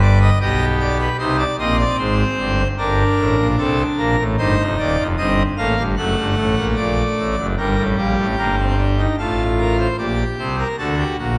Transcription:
0.00 0.30 G1 medium
0.00 0.30 G2 medium
0.00 0.30 B4 medium
0.00 0.19 D5 medium
0.21 0.38 D#5 medium
0.41 1.09 B1 medium
0.41 1.09 B2 medium
0.41 1.09 G4 medium
0.41 0.65 D#5 medium
0.80 0.97 D5 medium
1.00 1.17 B4 medium
1.19 1.44 C2 medium
1.19 1.44 C3 medium
1.19 1.44 D#4 medium
1.19 1.36 C5 medium
1.39 1.56 D5 medium
1.59 1.84 A#1 medium
1.59 1.84 A#2 medium
1.59 2.62 C4 medium
1.59 1.76 D#5 medium
1.79 1.96 D5 medium
1.98 2.23 G#1 medium
1.98 2.23 G#2 medium
1.98 2.68 C5 medium
2.38 2.64 G1 medium
2.38 2.63 G2 medium
2.78 3.03 G1 medium
2.78 3.03 G2 medium
2.78 4.16 D4 medium
2.78 3.47 A#4 medium
3.18 3.36 A1 medium
3.18 3.36 A2 medium
3.38 3.56 A#1 medium
3.38 3.55 A#2 medium
3.58 3.83 C2 medium
3.58 3.83 C3 medium
3.58 3.83 A4 medium
3.98 4.16 A#1 medium
3.98 4.16 A#2 medium
3.98 4.23 A#4 medium
4.18 4.36 A1 medium
4.18 4.36 A2 medium
4.38 4.56 G1 medium
4.38 4.56 G2 medium
4.38 5.07 D#4 medium
4.38 4.63 C5 medium
4.58 4.76 F1 medium
4.58 4.76 F2 medium
4.78 4.96 D#1 medium
4.78 4.96 D#2 medium
4.78 5.03 D5 medium
4.98 5.15 F1 medium
4.98 5.16 F2 medium
5.18 5.43 G1 medium
5.18 5.42 G2 medium
5.18 5.43 C4 medium
5.18 5.43 D#5 medium
5.57 5.75 A1 medium
5.57 5.75 A2 medium
5.57 5.83 A#3 medium
5.57 5.82 F5 medium
5.78 5.95 G1 medium
5.78 5.95 G2 medium
5.97 6.15 F#1 medium
5.97 6.15 F#2 medium
5.97 7.36 A3 medium
5.97 6.66 F#5 medium
6.17 6.35 G1 medium
6.17 6.35 G2 medium
6.37 6.55 A1 medium
6.37 6.55 A2 medium
6.57 6.75 A#1 medium
6.57 6.75 A#2 medium
6.77 7.02 A#1 medium
6.77 7.02 A#2 medium
6.77 7.46 D5 medium
7.17 7.35 A1 medium
7.17 7.35 A2 medium
7.38 7.55 F#1 medium
7.38 7.55 F#2 medium
7.58 7.75 G1 medium
7.58 7.75 G2 medium
7.58 8.27 G3 medium
7.58 7.83 A#4 medium
7.77 7.95 A1 medium
7.77 7.95 A2 medium
7.98 8.15 A#1 medium
7.98 8.15 A#2 medium
7.98 9.01 G4 medium
8.18 8.35 A1 medium
8.18 8.35 A2 medium
8.38 9.07 G1 medium
8.38 9.07 G2 medium
8.38 8.55 A#3 medium
8.58 8.75 C4 medium
8.78 8.95 D4 medium
8.98 9.16 D#4 medium
9.18 9.87 A1 soft
9.18 9.88 A2 medium
9.18 9.88 F4 medium
9.18 9.43 A4 medium
9.59 9.76 A#4 medium
9.79 9.96 C5 medium
9.98 10.24 A#1 soft
9.98 10.24 A#2 soft
9.98 10.68 G4 soft
9.98 10.23 D5 medium
10.38 10.63 C2 soft
10.38 10.63 C3 medium
10.38 10.56 C5 medium
10.59 10.76 A#4 medium
10.78 11.04 D2 medium
10.78 11.03 D3 medium
10.78 11.17 F#4 medium
10.78 10.96 A4 medium
10.99 11.16 G4 medium
11.19 11.38 A#1 soft
11.19 11.38 A#2 medium
11.19 11.36 F#4 medium

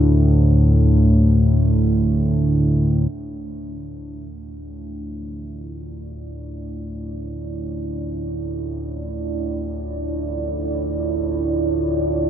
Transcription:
0.00 3.11 D2 medium
0.00 3.12 A2 medium
0.00 3.14 D4 medium
3.12 12.30 D2 medium
3.12 12.30 A2 medium
3.12 12.30 E4 medium
4.08 12.30 F4 medium
4.43 12.30 D5 medium
5.75 12.30 C#5 medium

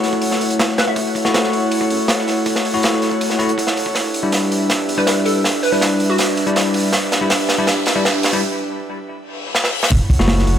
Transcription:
0.00 0.12 F#1 medium
0.00 1.23 A3 medium
0.00 0.76 E4 medium
0.00 1.23 E4 medium
0.00 1.23 F#4 medium
0.00 0.76 A4 medium
0.00 0.76 C#5 medium
0.00 0.76 F#5 medium
0.00 snare soft
0.00 open hi-hat medium
0.13 kick medium
0.21 0.96 F#1 loud
0.21 open hi-hat medium
0.31 snare soft
0.41 open hi-hat medium
0.50 closed hi-hat soft
0.59 snare loud
0.59 open hi-hat medium
0.69 snare soft
0.78 0.86 B4 medium
0.78 snare loud
0.78 open hi-hat medium
0.87 1.40 E5 medium
0.87 kick medium
0.96 1.05 F#1 loud
0.96 2.06 E4 medium
0.96 2.06 A4 medium
0.96 2.06 C#5 medium
0.96 2.06 F#5 loud
0.96 kick loud
0.96 open hi-hat medium
1.15 kick medium
1.15 open hi-hat medium
1.25 1.51 F#1 medium
1.25 2.72 A3 medium
1.25 2.72 E4 medium
1.25 2.72 F#4 loud
1.25 snare soft
1.34 snare loud
1.34 open hi-hat medium
1.44 snare soft
1.53 1.61 F#1 medium
1.53 open hi-hat medium
1.71 open hi-hat medium
1.81 kick medium
1.90 1.99 F#2 medium
1.90 open hi-hat medium
2.08 snare loud
2.08 open hi-hat medium
2.18 snare soft
2.27 snare soft
2.27 open hi-hat medium
2.46 2.55 F#1 loud
2.46 3.74 E4 medium
2.46 3.74 A4 medium
2.46 3.74 C#5 medium
2.46 3.74 F#5 medium
2.46 kick loud
2.46 open hi-hat medium
2.55 snare soft
2.65 open hi-hat medium
2.74 3.01 F#1 medium
2.74 3.37 A3 medium
2.74 3.37 E4 medium
2.74 3.37 F#4 medium
2.83 snare loud
2.83 open hi-hat medium
2.93 snare soft
3.02 3.11 F#1 medium
3.02 snare soft
3.02 open hi-hat medium
3.11 kick medium
3.21 3.94 F#1 medium
3.21 open hi-hat medium
3.30 snare soft
3.39 3.51 A3 medium
3.39 3.51 E4 medium
3.39 3.51 F#4 loud
3.39 open hi-hat medium
3.49 closed hi-hat soft
3.58 kick medium
3.58 open hi-hat medium
3.67 snare soft
3.77 open hi-hat medium
3.86 kick medium
3.95 4.04 E1 loud
3.95 5.05 D4 loud
3.95 5.05 G4 medium
3.95 5.05 B4 medium
3.95 5.05 E5 loud
3.95 snare soft
3.95 open hi-hat medium
3.95 riser medium
4.14 open hi-hat medium
4.23 4.50 E1 medium
4.23 4.68 G3 medium
4.23 4.68 D4 medium
4.23 4.68 E4 medium
4.32 snare soft
4.32 open hi-hat medium
4.51 4.60 E1 medium
4.51 open hi-hat medium
4.70 snare medium
4.70 open hi-hat medium
4.88 4.97 E2 loud
4.88 open hi-hat medium
4.98 5.43 G3 medium
4.98 5.43 D4 medium
4.98 5.43 E4 medium
4.98 5.05 B4 medium
5.07 5.29 B4 medium
5.07 snare medium
5.07 open hi-hat medium
5.25 5.48 A4 medium
5.25 open hi-hat medium
5.44 5.53 E1 loud
5.44 6.72 G3 medium
5.44 6.72 D4 medium
5.44 6.72 B4 medium
5.44 6.72 E5 medium
5.44 snare medium
5.44 open hi-hat medium
5.63 5.69 B4 medium
5.63 open hi-hat medium
5.72 5.99 E1 medium
5.72 6.17 G3 medium
5.72 6.17 D4 medium
5.72 6.17 E4 medium
5.72 5.78 B4 medium
5.81 snare medium
5.81 open hi-hat medium
6.00 6.09 E1 medium
6.00 open hi-hat medium
6.10 6.62 F#4 medium
6.18 6.92 E1 loud
6.18 snare medium
6.18 open hi-hat medium
6.37 open hi-hat medium
6.47 6.92 G3 medium
6.47 6.92 D4 medium
6.47 6.92 E4 medium
6.47 closed hi-hat soft
6.56 snare medium
6.56 open hi-hat medium
6.74 open hi-hat medium
6.93 8.03 D4 loud
6.93 8.03 G4 medium
6.93 8.03 B4 medium
6.93 8.03 E5 loud
6.93 snare medium
6.93 open hi-hat medium
7.12 snare medium
7.12 open hi-hat medium
7.21 7.48 E1 medium
7.21 7.29 G3 medium
7.21 7.29 D4 medium
7.21 7.29 E4 loud
7.30 snare medium
7.30 open hi-hat medium
7.49 7.58 E1 medium
7.49 snare medium
7.49 open hi-hat medium
7.58 7.66 G3 medium
7.58 7.66 D4 medium
7.58 7.66 E4 loud
7.67 snare medium
7.67 open hi-hat medium
7.86 7.95 E2 loud
7.86 snare medium
7.86 open hi-hat medium
7.96 8.04 G3 medium
7.96 8.04 D4 medium
7.96 8.04 E4 medium
8.05 snare medium
8.05 open hi-hat medium
8.23 snare medium
8.23 open hi-hat medium
8.33 8.41 G3 medium
8.33 8.41 D4 medium
8.33 8.41 E4 loud
8.33 open hi-hat medium
9.17 reverse cymbal medium
9.55 snare medium
9.64 snare medium
9.83 snare medium
9.91 10.00 F#1 loud
9.91 10.59 E4 loud
9.91 10.59 A4 medium
9.91 10.59 C#5 medium
9.91 10.59 F#5 loud
9.91 kick loud
9.91 open hi-hat medium
9.91 sub drop medium
10.10 kick medium
10.10 open hi-hat medium
10.19 10.46 F#1 medium
10.19 10.59 A3 medium
10.19 10.59 E4 medium
10.19 10.59 F#4 medium
10.19 snare medium
10.28 snare loud
10.28 open hi-hat medium
10.39 snare soft
10.47 10.56 F#1 medium
10.47 open hi-hat medium

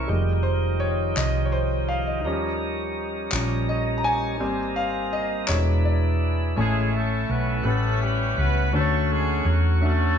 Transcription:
0.00 0.10 E3 soft
0.00 0.11 A#3 soft
0.00 0.11 C#4 medium
0.00 0.10 A4 medium
0.00 0.47 A#4 medium
0.00 0.11 C5 medium
0.00 0.10 C#5 medium
0.07 1.13 F1 medium
0.07 2.21 D#3 medium
0.07 2.21 F3 medium
0.07 1.12 G3 soft
0.07 1.12 G#3 soft
0.07 1.13 D#4 medium
0.07 2.21 D#4 medium
0.07 2.21 G4 medium
0.43 0.51 C5 medium
0.80 1.17 C#5 medium
1.17 2.25 C2 medium
1.17 1.47 D#5 medium
1.17 clap medium
1.45 1.53 C#5 medium
1.52 1.90 C5 medium
1.89 2.07 F5 medium
2.07 2.41 D#5 medium
2.25 3.29 D#2 loud
2.25 3.32 F3 medium
2.25 4.37 G3 medium
2.25 3.32 G3 medium
2.25 4.37 C#4 medium
2.25 3.32 C#4 medium
2.25 4.37 D#4 medium
2.25 4.37 A#4 medium
3.32 4.41 A#1 medium
3.32 3.65 F3 soft
3.32 3.66 G3 soft
3.32 3.66 C#4 medium
3.32 clap medium
3.69 3.99 D#5 medium
3.98 4.05 A#5 medium
4.04 4.79 G#5 loud
4.40 5.45 G#1 loud
4.40 5.48 G3 medium
4.40 4.88 G3 medium
4.40 4.89 A#3 soft
4.40 5.48 C4 medium
4.40 4.89 C4 medium
4.40 5.49 D#4 medium
4.40 5.48 A#4 medium
4.76 5.14 F5 medium
5.13 5.50 D#5 medium
5.47 6.53 E1 medium
5.47 5.96 F#3 soft
5.47 5.96 G#3 soft
5.47 6.58 G#3 medium
5.47 5.97 D4 medium
5.47 6.58 D4 medium
5.47 6.55 E4 medium
5.47 6.58 B4 medium
5.47 5.57 C#5 medium
5.47 clap medium
5.85 6.53 D5 medium
6.56 7.25 A1 medium
6.56 7.61 A2 soft
6.56 6.91 G#3 medium
6.56 7.24 A3 medium
6.56 7.65 A3 medium
6.56 7.24 C#4 medium
6.56 7.62 C#4 medium
6.56 7.65 E4 soft
6.56 7.24 E4 medium
6.56 7.62 E4 medium
6.56 6.91 G#4 medium
6.56 7.65 C#5 medium
6.56 7.25 C#5 medium
6.56 7.25 G#5 medium
6.95 7.30 A3 medium
6.95 7.30 A4 medium
7.29 7.62 B1 medium
7.29 7.65 B3 medium
7.29 7.65 B4 medium
7.63 8.33 A1 medium
7.63 8.69 A2 soft
7.63 8.72 G3 medium
7.63 8.32 A3 medium
7.63 8.01 A3 medium
7.63 8.72 C#4 medium
7.63 8.32 C#4 soft
7.63 8.69 C#4 medium
7.63 8.69 E4 medium
7.63 8.33 G4 soft
7.63 8.01 A4 medium
7.63 8.72 B4 medium
7.63 8.32 B4 medium
7.63 8.73 F#5 soft
7.63 8.32 F#5 soft
8.01 8.37 G3 medium
8.01 8.37 G4 medium
8.38 8.71 C#2 medium
8.38 8.71 B3 medium
8.38 8.71 B4 medium
8.73 9.42 D2 medium
8.73 9.78 D3 medium
8.73 10.18 A3 medium
8.73 9.40 A3 medium
8.73 9.07 A3 medium
8.73 10.18 C#4 medium
8.73 9.41 C#4 medium
8.73 9.78 C#4 medium
8.73 10.18 F#4 soft
8.73 9.41 F#4 medium
8.73 9.45 F#4 medium
8.73 9.07 A4 medium
8.73 8.80 B4 medium
8.73 10.18 C#5 medium
8.80 9.44 C#5 medium
9.10 9.46 G#3 medium
9.10 9.46 G#4 medium
9.45 10.18 E2 medium
9.45 9.82 F#3 medium
9.45 9.82 F#4 medium
9.81 10.18 D3 medium
9.81 10.18 A3 medium
9.81 10.18 C#4 soft
9.81 10.18 C#4 medium
9.81 10.18 F#4 medium
9.81 10.18 A4 medium
9.81 10.18 E5 medium

